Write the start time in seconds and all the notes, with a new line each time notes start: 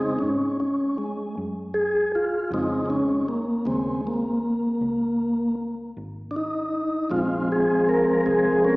Already playing: F2 C#3 G#3 C4 D#4
0.19 G#2 C#4
0.60 C#4
0.98 G#3
1.37 F#2
1.74 G#4
2.15 F4
2.51 F2 C#3 G#3 C4 D#4
2.86 C4
2.90 C#4
3.28 A#3
3.65 D#2 C#3 G#3 C4
4.07 A#3
4.81 C#2
5.97 G#1
6.31 D4
6.36 D#4
7.10 A#1 F3 G#3 C4 F4
7.52 G#4
7.89 A#4
8.26 C2 G#4
8.64 C#4 A#4